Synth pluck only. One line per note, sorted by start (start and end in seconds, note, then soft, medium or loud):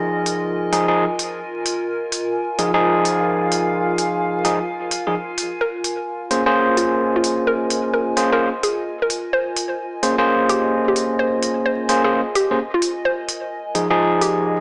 5.61 5.80 A#4 loud
6.77 6.96 F4 medium
7.16 7.31 F4 medium
7.47 7.70 A#4 medium
7.93 8.13 A#4 medium
8.32 8.47 A#4 medium
8.63 8.83 G#4 medium
9.02 9.17 A#4 medium
9.33 9.52 C5 loud
10.49 10.69 G4 medium
10.88 11.03 G4 medium
11.19 11.42 C5 medium
11.66 11.85 C5 medium
12.04 12.19 G#4 medium
12.35 12.55 G4 medium
12.74 12.89 F4 medium
13.05 13.24 C5 medium
14.21 14.41 G4 medium